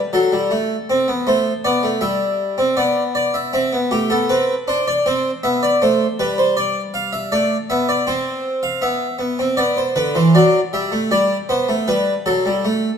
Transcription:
0.13 F#3 A4
0.32 G3
0.51 A3
0.90 C4
1.08 B3
1.27 A3 C5
1.64 B3 D5
1.83 A3
2.01 G3 E5
2.58 C4
2.77 B3 D5
3.15 D5
3.34 E5
3.53 C4 E5
3.73 B3
3.91 A3 G4
4.10 B3 A4
4.29 C4 B4
4.68 D4 C5
4.88 D5
5.06 C4 C5
5.43 B3 E5
5.63 D5
5.82 A3 C5
6.19 G3 B4
6.38 C5
6.57 D5
6.94 F5
7.13 E5
7.32 A3 D5
7.70 B3 E5
7.89 D5
8.07 C4 C5
8.63 F5
8.82 B3 E5
9.19 B3
9.39 C4
9.57 B3 D5
9.77 C5
9.96 D3 B4
10.15 E3 C5
10.35 F#3 D5
10.73 G3 E5
10.92 A3
11.11 G3 D5
11.49 B3 C5
11.69 A3
11.88 G3 B4
12.26 F#3 A4
12.46 G3
12.65 A3

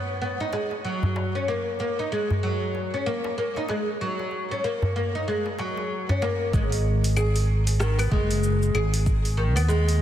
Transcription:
Already playing: B3
0.22 B3
0.40 D#4, darbuka ka
0.53 G#3, darbuka tek
0.71 darbuka ka
0.85 F#3
1.03 darbuka dum
1.16 darbuka ka, darbuka tek
1.35 C#4
1.48 A#3
1.79 A#3, darbuka ka
1.99 D#4
2.12 G#3
2.30 darbuka dum
2.43 F#3
2.75 darbuka ka
2.94 C#4
3.06 A#3
3.24 darbuka tek
3.38 A#3
3.56 D#4, darbuka ka
3.69 G#3, darbuka tek
4.01 F#3
4.19 darbuka tek
4.31 darbuka ka
4.51 C#4
4.64 A#3
4.82 darbuka dum
4.96 A#3
5.15 D#4
5.28 G#3
5.46 darbuka ka
5.59 F#3, darbuka tek
5.77 darbuka ka
6.09 C#4, darbuka dum
6.22 A#3, darbuka ka, darbuka tek
6.53 G#1 G#3, kick, shaker
6.72 open hi-hat, shaker
7.04 open hi-hat, shaker
7.17 G#4, claves, shaker
7.36 open hi-hat, shaker
7.67 open hi-hat, shaker
7.80 D#3, cross-stick, shaker
7.99 B3, open hi-hat, claves, shaker
8.12 F#1 G#3, kick
8.31 open hi-hat, shaker
8.43 shaker
8.62 shaker
8.74 G#1 G#4, claves
8.94 open hi-hat, shaker
9.06 kick, shaker
9.25 open hi-hat, shaker
9.37 D#3
9.56 D#2 B3, open hi-hat, claves, shaker
9.68 G#3, shaker
9.89 open hi-hat, shaker

